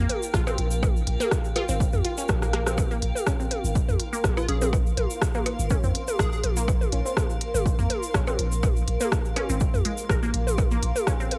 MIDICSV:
0, 0, Header, 1, 7, 480
1, 0, Start_track
1, 0, Tempo, 487805
1, 814, Time_signature, 4, 2, 24, 8
1, 11200, End_track
2, 0, Start_track
2, 0, Title_t, "Ambient pad"
2, 0, Program_c, 0, 92
2, 0, Note_on_c, 0, 70, 88
2, 0, Note_on_c, 0, 77, 77
2, 0, Note_on_c, 0, 79, 77
2, 3024, Note_on_c, 0, 84, 76
2, 3050, Note_off_c, 0, 79, 0
2, 10703, Note_on_c, 0, 79, 78
2, 10730, Note_off_c, 0, 84, 0
2, 11200, Note_off_c, 0, 70, 0
2, 11200, Note_off_c, 0, 77, 0
2, 11200, Note_off_c, 0, 79, 0
2, 11200, End_track
3, 0, Start_track
3, 0, Title_t, "Digital synth lead"
3, 0, Program_c, 1, 84
3, 4302, Note_on_c, 1, 65, 94
3, 4392, Note_off_c, 1, 65, 0
3, 4414, Note_on_c, 1, 68, 93
3, 4497, Note_off_c, 1, 68, 0
3, 4543, Note_on_c, 1, 68, 74
3, 4614, Note_off_c, 1, 68, 0
3, 6095, Note_on_c, 1, 68, 95
3, 6177, Note_off_c, 1, 68, 0
3, 6224, Note_on_c, 1, 68, 78
3, 6294, Note_off_c, 1, 68, 0
3, 11200, End_track
4, 0, Start_track
4, 0, Title_t, "Synth pluck"
4, 0, Program_c, 2, 84
4, 334, Note_on_c, 2, 65, 101
4, 386, Note_off_c, 2, 65, 0
4, 462, Note_on_c, 2, 60, 76
4, 508, Note_off_c, 2, 60, 0
4, 1182, Note_on_c, 2, 58, 101
4, 1228, Note_off_c, 2, 58, 0
4, 1531, Note_on_c, 2, 65, 99
4, 1585, Note_off_c, 2, 65, 0
4, 1661, Note_on_c, 2, 60, 79
4, 1707, Note_off_c, 2, 60, 0
4, 2013, Note_on_c, 2, 65, 76
4, 2092, Note_off_c, 2, 65, 0
4, 2143, Note_on_c, 2, 61, 73
4, 2188, Note_off_c, 2, 61, 0
4, 2382, Note_on_c, 2, 58, 76
4, 2450, Note_off_c, 2, 58, 0
4, 2494, Note_on_c, 2, 58, 106
4, 2546, Note_off_c, 2, 58, 0
4, 2622, Note_on_c, 2, 60, 77
4, 2650, Note_off_c, 2, 60, 0
4, 2863, Note_on_c, 2, 58, 110
4, 2908, Note_off_c, 2, 58, 0
4, 3214, Note_on_c, 2, 61, 87
4, 3245, Note_off_c, 2, 61, 0
4, 3343, Note_on_c, 2, 60, 78
4, 3388, Note_off_c, 2, 60, 0
4, 4062, Note_on_c, 2, 58, 102
4, 4107, Note_off_c, 2, 58, 0
4, 4414, Note_on_c, 2, 61, 75
4, 4446, Note_off_c, 2, 61, 0
4, 4544, Note_on_c, 2, 60, 79
4, 4588, Note_off_c, 2, 60, 0
4, 5263, Note_on_c, 2, 58, 102
4, 5308, Note_off_c, 2, 58, 0
4, 5615, Note_on_c, 2, 61, 89
4, 5646, Note_off_c, 2, 61, 0
4, 5743, Note_on_c, 2, 60, 79
4, 5788, Note_off_c, 2, 60, 0
4, 6462, Note_on_c, 2, 58, 105
4, 6508, Note_off_c, 2, 58, 0
4, 6814, Note_on_c, 2, 61, 76
4, 6845, Note_off_c, 2, 61, 0
4, 6942, Note_on_c, 2, 60, 77
4, 6987, Note_off_c, 2, 60, 0
4, 7663, Note_on_c, 2, 58, 102
4, 7708, Note_off_c, 2, 58, 0
4, 8014, Note_on_c, 2, 61, 87
4, 8045, Note_off_c, 2, 61, 0
4, 8143, Note_on_c, 2, 60, 76
4, 8188, Note_off_c, 2, 60, 0
4, 8862, Note_on_c, 2, 58, 107
4, 8907, Note_off_c, 2, 58, 0
4, 9215, Note_on_c, 2, 61, 80
4, 9246, Note_off_c, 2, 61, 0
4, 9344, Note_on_c, 2, 60, 73
4, 9388, Note_off_c, 2, 60, 0
4, 9694, Note_on_c, 2, 56, 75
4, 9726, Note_off_c, 2, 56, 0
4, 9934, Note_on_c, 2, 70, 85
4, 9987, Note_off_c, 2, 70, 0
4, 10063, Note_on_c, 2, 58, 101
4, 10108, Note_off_c, 2, 58, 0
4, 10542, Note_on_c, 2, 58, 108
4, 10588, Note_off_c, 2, 58, 0
4, 10893, Note_on_c, 2, 61, 85
4, 10925, Note_off_c, 2, 61, 0
4, 11022, Note_on_c, 2, 60, 77
4, 11068, Note_off_c, 2, 60, 0
4, 11200, End_track
5, 0, Start_track
5, 0, Title_t, "Sub bass"
5, 0, Program_c, 3, 38
5, 334, Note_on_c, 3, 34, 95
5, 421, Note_off_c, 3, 34, 0
5, 574, Note_on_c, 3, 34, 104
5, 996, Note_off_c, 3, 34, 0
5, 1055, Note_on_c, 3, 34, 102
5, 1141, Note_off_c, 3, 34, 0
5, 1663, Note_on_c, 3, 32, 97
5, 1818, Note_off_c, 3, 32, 0
5, 1903, Note_on_c, 3, 41, 89
5, 1978, Note_off_c, 3, 41, 0
5, 2253, Note_on_c, 3, 34, 84
5, 2795, Note_off_c, 3, 34, 0
5, 2975, Note_on_c, 3, 34, 94
5, 3061, Note_off_c, 3, 34, 0
5, 3583, Note_on_c, 3, 32, 102
5, 3739, Note_off_c, 3, 32, 0
5, 3824, Note_on_c, 3, 41, 89
5, 3898, Note_off_c, 3, 41, 0
5, 4174, Note_on_c, 3, 34, 91
5, 4261, Note_off_c, 3, 34, 0
5, 4414, Note_on_c, 3, 34, 106
5, 4836, Note_off_c, 3, 34, 0
5, 4895, Note_on_c, 3, 34, 98
5, 4981, Note_off_c, 3, 34, 0
5, 5503, Note_on_c, 3, 32, 104
5, 5658, Note_off_c, 3, 32, 0
5, 5742, Note_on_c, 3, 41, 94
5, 5817, Note_off_c, 3, 41, 0
5, 6094, Note_on_c, 3, 34, 95
5, 6181, Note_off_c, 3, 34, 0
5, 6333, Note_on_c, 3, 34, 104
5, 6755, Note_off_c, 3, 34, 0
5, 6814, Note_on_c, 3, 34, 102
5, 6901, Note_off_c, 3, 34, 0
5, 7423, Note_on_c, 3, 32, 99
5, 7579, Note_off_c, 3, 32, 0
5, 7663, Note_on_c, 3, 41, 88
5, 7737, Note_off_c, 3, 41, 0
5, 8014, Note_on_c, 3, 34, 89
5, 8101, Note_off_c, 3, 34, 0
5, 8255, Note_on_c, 3, 34, 101
5, 8677, Note_off_c, 3, 34, 0
5, 8735, Note_on_c, 3, 34, 94
5, 8821, Note_off_c, 3, 34, 0
5, 9344, Note_on_c, 3, 32, 97
5, 9499, Note_off_c, 3, 32, 0
5, 9584, Note_on_c, 3, 41, 93
5, 9658, Note_off_c, 3, 41, 0
5, 9934, Note_on_c, 3, 34, 93
5, 10021, Note_off_c, 3, 34, 0
5, 10174, Note_on_c, 3, 34, 99
5, 10596, Note_off_c, 3, 34, 0
5, 10654, Note_on_c, 3, 34, 99
5, 10741, Note_off_c, 3, 34, 0
5, 11200, End_track
6, 0, Start_track
6, 0, Title_t, "Percussion blips"
6, 463, Note_on_c, 9, 56, 77
6, 562, Note_off_c, 9, 56, 0
6, 815, Note_on_c, 9, 56, 98
6, 913, Note_off_c, 9, 56, 0
6, 1535, Note_on_c, 9, 56, 82
6, 1633, Note_off_c, 9, 56, 0
6, 2732, Note_on_c, 9, 56, 97
6, 2831, Note_off_c, 9, 56, 0
6, 4302, Note_on_c, 9, 56, 84
6, 4400, Note_off_c, 9, 56, 0
6, 4653, Note_on_c, 9, 56, 97
6, 4752, Note_off_c, 9, 56, 0
6, 5373, Note_on_c, 9, 56, 84
6, 5472, Note_off_c, 9, 56, 0
6, 6573, Note_on_c, 9, 56, 101
6, 6672, Note_off_c, 9, 56, 0
6, 8141, Note_on_c, 9, 56, 81
6, 8240, Note_off_c, 9, 56, 0
6, 8493, Note_on_c, 9, 56, 93
6, 8591, Note_off_c, 9, 56, 0
6, 9213, Note_on_c, 9, 56, 84
6, 9312, Note_off_c, 9, 56, 0
6, 10414, Note_on_c, 9, 56, 88
6, 10512, Note_off_c, 9, 56, 0
6, 11200, End_track
7, 0, Start_track
7, 0, Title_t, "Drums"
7, 93, Note_on_c, 9, 42, 88
7, 94, Note_on_c, 9, 48, 44
7, 192, Note_off_c, 9, 42, 0
7, 193, Note_off_c, 9, 48, 0
7, 223, Note_on_c, 9, 82, 75
7, 321, Note_off_c, 9, 82, 0
7, 332, Note_on_c, 9, 37, 91
7, 334, Note_on_c, 9, 36, 115
7, 337, Note_on_c, 9, 82, 59
7, 431, Note_off_c, 9, 37, 0
7, 432, Note_off_c, 9, 36, 0
7, 436, Note_off_c, 9, 82, 0
7, 462, Note_on_c, 9, 82, 35
7, 463, Note_on_c, 9, 48, 43
7, 561, Note_off_c, 9, 82, 0
7, 562, Note_off_c, 9, 48, 0
7, 572, Note_on_c, 9, 42, 88
7, 670, Note_off_c, 9, 42, 0
7, 696, Note_on_c, 9, 82, 83
7, 794, Note_off_c, 9, 82, 0
7, 814, Note_on_c, 9, 36, 115
7, 815, Note_on_c, 9, 48, 43
7, 817, Note_on_c, 9, 82, 61
7, 912, Note_off_c, 9, 36, 0
7, 913, Note_off_c, 9, 48, 0
7, 916, Note_off_c, 9, 82, 0
7, 949, Note_on_c, 9, 82, 34
7, 1047, Note_off_c, 9, 82, 0
7, 1053, Note_on_c, 9, 42, 89
7, 1151, Note_off_c, 9, 42, 0
7, 1184, Note_on_c, 9, 48, 45
7, 1187, Note_on_c, 9, 82, 69
7, 1283, Note_off_c, 9, 48, 0
7, 1285, Note_off_c, 9, 82, 0
7, 1292, Note_on_c, 9, 37, 98
7, 1293, Note_on_c, 9, 36, 116
7, 1298, Note_on_c, 9, 82, 70
7, 1391, Note_off_c, 9, 37, 0
7, 1392, Note_off_c, 9, 36, 0
7, 1396, Note_off_c, 9, 82, 0
7, 1422, Note_on_c, 9, 82, 37
7, 1520, Note_off_c, 9, 82, 0
7, 1532, Note_on_c, 9, 42, 90
7, 1535, Note_on_c, 9, 48, 41
7, 1631, Note_off_c, 9, 42, 0
7, 1633, Note_off_c, 9, 48, 0
7, 1660, Note_on_c, 9, 82, 77
7, 1758, Note_off_c, 9, 82, 0
7, 1773, Note_on_c, 9, 36, 112
7, 1779, Note_on_c, 9, 82, 66
7, 1872, Note_off_c, 9, 36, 0
7, 1877, Note_off_c, 9, 82, 0
7, 1896, Note_on_c, 9, 82, 40
7, 1903, Note_on_c, 9, 48, 42
7, 1994, Note_off_c, 9, 82, 0
7, 2001, Note_off_c, 9, 48, 0
7, 2012, Note_on_c, 9, 42, 92
7, 2111, Note_off_c, 9, 42, 0
7, 2140, Note_on_c, 9, 82, 81
7, 2239, Note_off_c, 9, 82, 0
7, 2247, Note_on_c, 9, 82, 61
7, 2253, Note_on_c, 9, 36, 115
7, 2254, Note_on_c, 9, 37, 96
7, 2254, Note_on_c, 9, 48, 45
7, 2346, Note_off_c, 9, 82, 0
7, 2352, Note_off_c, 9, 36, 0
7, 2352, Note_off_c, 9, 37, 0
7, 2352, Note_off_c, 9, 48, 0
7, 2382, Note_on_c, 9, 37, 53
7, 2385, Note_on_c, 9, 82, 40
7, 2481, Note_off_c, 9, 37, 0
7, 2484, Note_off_c, 9, 82, 0
7, 2492, Note_on_c, 9, 37, 81
7, 2492, Note_on_c, 9, 42, 88
7, 2590, Note_off_c, 9, 37, 0
7, 2590, Note_off_c, 9, 42, 0
7, 2622, Note_on_c, 9, 37, 81
7, 2623, Note_on_c, 9, 48, 43
7, 2625, Note_on_c, 9, 82, 80
7, 2720, Note_off_c, 9, 37, 0
7, 2721, Note_off_c, 9, 48, 0
7, 2724, Note_off_c, 9, 82, 0
7, 2732, Note_on_c, 9, 48, 45
7, 2733, Note_on_c, 9, 36, 125
7, 2733, Note_on_c, 9, 82, 73
7, 2831, Note_off_c, 9, 48, 0
7, 2832, Note_off_c, 9, 36, 0
7, 2832, Note_off_c, 9, 82, 0
7, 2865, Note_on_c, 9, 82, 37
7, 2963, Note_off_c, 9, 82, 0
7, 2972, Note_on_c, 9, 42, 88
7, 3071, Note_off_c, 9, 42, 0
7, 3103, Note_on_c, 9, 48, 46
7, 3113, Note_on_c, 9, 82, 85
7, 3201, Note_off_c, 9, 48, 0
7, 3211, Note_off_c, 9, 82, 0
7, 3213, Note_on_c, 9, 37, 95
7, 3214, Note_on_c, 9, 36, 116
7, 3215, Note_on_c, 9, 82, 73
7, 3311, Note_off_c, 9, 37, 0
7, 3312, Note_off_c, 9, 36, 0
7, 3313, Note_off_c, 9, 82, 0
7, 3345, Note_on_c, 9, 82, 37
7, 3444, Note_off_c, 9, 82, 0
7, 3453, Note_on_c, 9, 42, 94
7, 3454, Note_on_c, 9, 48, 45
7, 3552, Note_off_c, 9, 42, 0
7, 3552, Note_off_c, 9, 48, 0
7, 3587, Note_on_c, 9, 82, 84
7, 3686, Note_off_c, 9, 82, 0
7, 3694, Note_on_c, 9, 36, 120
7, 3694, Note_on_c, 9, 82, 67
7, 3792, Note_off_c, 9, 36, 0
7, 3793, Note_off_c, 9, 82, 0
7, 3823, Note_on_c, 9, 48, 45
7, 3826, Note_on_c, 9, 82, 43
7, 3922, Note_off_c, 9, 48, 0
7, 3924, Note_off_c, 9, 82, 0
7, 3932, Note_on_c, 9, 42, 93
7, 4030, Note_off_c, 9, 42, 0
7, 4068, Note_on_c, 9, 82, 83
7, 4166, Note_off_c, 9, 82, 0
7, 4172, Note_on_c, 9, 37, 103
7, 4174, Note_on_c, 9, 36, 116
7, 4174, Note_on_c, 9, 48, 47
7, 4175, Note_on_c, 9, 82, 70
7, 4271, Note_off_c, 9, 37, 0
7, 4272, Note_off_c, 9, 36, 0
7, 4273, Note_off_c, 9, 48, 0
7, 4274, Note_off_c, 9, 82, 0
7, 4303, Note_on_c, 9, 82, 39
7, 4401, Note_off_c, 9, 82, 0
7, 4414, Note_on_c, 9, 42, 98
7, 4512, Note_off_c, 9, 42, 0
7, 4541, Note_on_c, 9, 82, 81
7, 4542, Note_on_c, 9, 48, 48
7, 4639, Note_off_c, 9, 82, 0
7, 4640, Note_off_c, 9, 48, 0
7, 4654, Note_on_c, 9, 36, 127
7, 4660, Note_on_c, 9, 82, 66
7, 4752, Note_off_c, 9, 36, 0
7, 4758, Note_off_c, 9, 82, 0
7, 4787, Note_on_c, 9, 82, 37
7, 4885, Note_off_c, 9, 82, 0
7, 4894, Note_on_c, 9, 42, 97
7, 4894, Note_on_c, 9, 48, 47
7, 4992, Note_off_c, 9, 48, 0
7, 4993, Note_off_c, 9, 42, 0
7, 5021, Note_on_c, 9, 82, 87
7, 5120, Note_off_c, 9, 82, 0
7, 5133, Note_on_c, 9, 37, 101
7, 5134, Note_on_c, 9, 36, 126
7, 5138, Note_on_c, 9, 82, 68
7, 5231, Note_off_c, 9, 37, 0
7, 5232, Note_off_c, 9, 36, 0
7, 5236, Note_off_c, 9, 82, 0
7, 5260, Note_on_c, 9, 82, 38
7, 5262, Note_on_c, 9, 48, 47
7, 5359, Note_off_c, 9, 82, 0
7, 5360, Note_off_c, 9, 48, 0
7, 5373, Note_on_c, 9, 42, 99
7, 5472, Note_off_c, 9, 42, 0
7, 5504, Note_on_c, 9, 82, 83
7, 5602, Note_off_c, 9, 82, 0
7, 5608, Note_on_c, 9, 82, 68
7, 5614, Note_on_c, 9, 36, 123
7, 5614, Note_on_c, 9, 48, 45
7, 5706, Note_off_c, 9, 82, 0
7, 5712, Note_off_c, 9, 36, 0
7, 5713, Note_off_c, 9, 48, 0
7, 5742, Note_on_c, 9, 82, 39
7, 5841, Note_off_c, 9, 82, 0
7, 5854, Note_on_c, 9, 42, 99
7, 5952, Note_off_c, 9, 42, 0
7, 5979, Note_on_c, 9, 82, 83
7, 5982, Note_on_c, 9, 48, 45
7, 6078, Note_off_c, 9, 82, 0
7, 6081, Note_off_c, 9, 48, 0
7, 6093, Note_on_c, 9, 37, 106
7, 6094, Note_on_c, 9, 36, 127
7, 6095, Note_on_c, 9, 82, 63
7, 6191, Note_off_c, 9, 37, 0
7, 6192, Note_off_c, 9, 36, 0
7, 6194, Note_off_c, 9, 82, 0
7, 6223, Note_on_c, 9, 82, 41
7, 6322, Note_off_c, 9, 82, 0
7, 6332, Note_on_c, 9, 42, 102
7, 6334, Note_on_c, 9, 48, 46
7, 6430, Note_off_c, 9, 42, 0
7, 6432, Note_off_c, 9, 48, 0
7, 6460, Note_on_c, 9, 82, 93
7, 6558, Note_off_c, 9, 82, 0
7, 6574, Note_on_c, 9, 36, 127
7, 6578, Note_on_c, 9, 82, 76
7, 6672, Note_off_c, 9, 36, 0
7, 6676, Note_off_c, 9, 82, 0
7, 6703, Note_on_c, 9, 48, 47
7, 6707, Note_on_c, 9, 82, 41
7, 6801, Note_off_c, 9, 48, 0
7, 6805, Note_off_c, 9, 82, 0
7, 6812, Note_on_c, 9, 42, 100
7, 6911, Note_off_c, 9, 42, 0
7, 6947, Note_on_c, 9, 82, 83
7, 7045, Note_off_c, 9, 82, 0
7, 7053, Note_on_c, 9, 37, 95
7, 7054, Note_on_c, 9, 36, 127
7, 7054, Note_on_c, 9, 48, 49
7, 7064, Note_on_c, 9, 82, 69
7, 7151, Note_off_c, 9, 37, 0
7, 7152, Note_off_c, 9, 36, 0
7, 7152, Note_off_c, 9, 48, 0
7, 7162, Note_off_c, 9, 82, 0
7, 7181, Note_on_c, 9, 82, 43
7, 7280, Note_off_c, 9, 82, 0
7, 7292, Note_on_c, 9, 42, 99
7, 7390, Note_off_c, 9, 42, 0
7, 7423, Note_on_c, 9, 48, 47
7, 7428, Note_on_c, 9, 82, 86
7, 7522, Note_off_c, 9, 48, 0
7, 7526, Note_off_c, 9, 82, 0
7, 7534, Note_on_c, 9, 36, 122
7, 7542, Note_on_c, 9, 82, 77
7, 7632, Note_off_c, 9, 36, 0
7, 7640, Note_off_c, 9, 82, 0
7, 7664, Note_on_c, 9, 82, 41
7, 7762, Note_off_c, 9, 82, 0
7, 7773, Note_on_c, 9, 42, 99
7, 7774, Note_on_c, 9, 48, 48
7, 7872, Note_off_c, 9, 42, 0
7, 7872, Note_off_c, 9, 48, 0
7, 7900, Note_on_c, 9, 82, 80
7, 7999, Note_off_c, 9, 82, 0
7, 8013, Note_on_c, 9, 37, 100
7, 8014, Note_on_c, 9, 36, 122
7, 8016, Note_on_c, 9, 82, 63
7, 8111, Note_off_c, 9, 37, 0
7, 8112, Note_off_c, 9, 36, 0
7, 8114, Note_off_c, 9, 82, 0
7, 8141, Note_on_c, 9, 48, 47
7, 8141, Note_on_c, 9, 82, 46
7, 8239, Note_off_c, 9, 82, 0
7, 8240, Note_off_c, 9, 48, 0
7, 8254, Note_on_c, 9, 42, 99
7, 8352, Note_off_c, 9, 42, 0
7, 8381, Note_on_c, 9, 82, 84
7, 8480, Note_off_c, 9, 82, 0
7, 8492, Note_on_c, 9, 82, 75
7, 8493, Note_on_c, 9, 48, 47
7, 8494, Note_on_c, 9, 36, 127
7, 8590, Note_off_c, 9, 82, 0
7, 8591, Note_off_c, 9, 48, 0
7, 8592, Note_off_c, 9, 36, 0
7, 8623, Note_on_c, 9, 82, 42
7, 8722, Note_off_c, 9, 82, 0
7, 8734, Note_on_c, 9, 42, 91
7, 8832, Note_off_c, 9, 42, 0
7, 8861, Note_on_c, 9, 82, 93
7, 8862, Note_on_c, 9, 48, 48
7, 8959, Note_off_c, 9, 82, 0
7, 8961, Note_off_c, 9, 48, 0
7, 8973, Note_on_c, 9, 37, 94
7, 8974, Note_on_c, 9, 36, 124
7, 8977, Note_on_c, 9, 82, 68
7, 9071, Note_off_c, 9, 37, 0
7, 9072, Note_off_c, 9, 36, 0
7, 9075, Note_off_c, 9, 82, 0
7, 9103, Note_on_c, 9, 82, 38
7, 9202, Note_off_c, 9, 82, 0
7, 9213, Note_on_c, 9, 42, 101
7, 9213, Note_on_c, 9, 48, 46
7, 9311, Note_off_c, 9, 42, 0
7, 9312, Note_off_c, 9, 48, 0
7, 9342, Note_on_c, 9, 82, 88
7, 9441, Note_off_c, 9, 82, 0
7, 9448, Note_on_c, 9, 82, 73
7, 9454, Note_on_c, 9, 36, 123
7, 9546, Note_off_c, 9, 82, 0
7, 9552, Note_off_c, 9, 36, 0
7, 9583, Note_on_c, 9, 48, 46
7, 9586, Note_on_c, 9, 82, 43
7, 9681, Note_off_c, 9, 48, 0
7, 9684, Note_off_c, 9, 82, 0
7, 9692, Note_on_c, 9, 42, 98
7, 9791, Note_off_c, 9, 42, 0
7, 9815, Note_on_c, 9, 82, 78
7, 9913, Note_off_c, 9, 82, 0
7, 9933, Note_on_c, 9, 37, 92
7, 9934, Note_on_c, 9, 36, 126
7, 9934, Note_on_c, 9, 48, 48
7, 9944, Note_on_c, 9, 82, 71
7, 10031, Note_off_c, 9, 37, 0
7, 10032, Note_off_c, 9, 36, 0
7, 10033, Note_off_c, 9, 48, 0
7, 10042, Note_off_c, 9, 82, 0
7, 10065, Note_on_c, 9, 82, 44
7, 10163, Note_off_c, 9, 82, 0
7, 10173, Note_on_c, 9, 42, 98
7, 10271, Note_off_c, 9, 42, 0
7, 10302, Note_on_c, 9, 48, 47
7, 10310, Note_on_c, 9, 82, 92
7, 10400, Note_off_c, 9, 48, 0
7, 10408, Note_off_c, 9, 82, 0
7, 10412, Note_on_c, 9, 82, 65
7, 10413, Note_on_c, 9, 36, 126
7, 10414, Note_on_c, 9, 48, 46
7, 10510, Note_off_c, 9, 82, 0
7, 10512, Note_off_c, 9, 36, 0
7, 10512, Note_off_c, 9, 48, 0
7, 10539, Note_on_c, 9, 82, 38
7, 10637, Note_off_c, 9, 82, 0
7, 10653, Note_on_c, 9, 42, 93
7, 10751, Note_off_c, 9, 42, 0
7, 10782, Note_on_c, 9, 48, 49
7, 10784, Note_on_c, 9, 82, 79
7, 10880, Note_off_c, 9, 48, 0
7, 10882, Note_off_c, 9, 82, 0
7, 10892, Note_on_c, 9, 37, 93
7, 10893, Note_on_c, 9, 36, 121
7, 10898, Note_on_c, 9, 82, 72
7, 10990, Note_off_c, 9, 37, 0
7, 10992, Note_off_c, 9, 36, 0
7, 10996, Note_off_c, 9, 82, 0
7, 11023, Note_on_c, 9, 82, 41
7, 11121, Note_off_c, 9, 82, 0
7, 11132, Note_on_c, 9, 42, 97
7, 11134, Note_on_c, 9, 48, 43
7, 11200, Note_off_c, 9, 42, 0
7, 11200, Note_off_c, 9, 48, 0
7, 11200, End_track
0, 0, End_of_file